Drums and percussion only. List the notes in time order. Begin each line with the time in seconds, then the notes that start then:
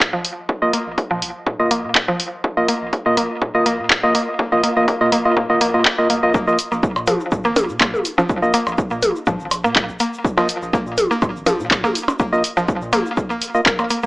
0.00 kick, clap
0.25 open hi-hat
0.49 kick
0.73 open hi-hat
0.98 kick, open hi-hat
1.22 open hi-hat
1.47 kick
1.71 open hi-hat
1.95 kick, clap
2.20 open hi-hat
2.44 kick
2.68 open hi-hat
2.93 kick, open hi-hat
3.17 open hi-hat
3.42 kick
3.66 open hi-hat
3.90 kick, clap
4.15 open hi-hat
4.39 kick
4.64 open hi-hat
4.88 kick, open hi-hat
5.12 open hi-hat
5.37 kick
5.61 open hi-hat
5.85 kick, clap
6.10 open hi-hat
6.34 kick, shaker
6.48 shaker
6.59 open hi-hat, shaker
6.72 shaker
6.83 kick, shaker
6.96 percussion blips, shaker
7.07 open hi-hat, high tom, shaker
7.20 shaker
7.32 kick, shaker
7.44 shaker
7.56 open hi-hat, high tom, percussion blips, shaker
7.69 shaker
7.80 kick, clap, open hi-hat, percussion blips, shaker
7.94 high tom, shaker
8.05 open hi-hat, shaker
8.18 percussion blips, shaker
8.29 kick, shaker
8.43 shaker
8.54 open hi-hat, shaker
8.67 percussion blips, shaker
8.78 kick, shaker
8.90 shaker
9.02 open hi-hat, high tom, shaker
9.16 shaker
9.26 kick, shaker
9.40 shaker
9.51 open hi-hat, percussion blips, shaker
9.65 shaker
9.76 kick, clap, open hi-hat, shaker
9.89 shaker
10.00 open hi-hat, shaker
10.14 shaker
10.25 kick, shaker
10.38 percussion blips, shaker
10.49 open hi-hat, shaker
10.62 shaker
10.73 kick, shaker
10.87 shaker
10.98 open hi-hat, high tom, shaker
11.11 shaker
11.22 kick, percussion blips, shaker
11.36 shaker
11.46 open hi-hat, high tom, percussion blips, shaker
11.60 shaker
11.71 kick, clap, open hi-hat, shaker
11.84 high tom, shaker
11.95 open hi-hat, shaker
12.08 percussion blips, shaker
12.19 kick, shaker
12.33 shaker
12.44 open hi-hat, shaker
12.57 shaker
12.68 kick, shaker
12.81 shaker
12.93 open hi-hat, high tom, percussion blips, shaker
13.06 shaker
13.17 kick, shaker
13.30 shaker
13.42 open hi-hat, shaker
13.55 shaker
13.66 kick, clap, open hi-hat, shaker
13.79 percussion blips, shaker
13.90 open hi-hat, shaker
14.03 shaker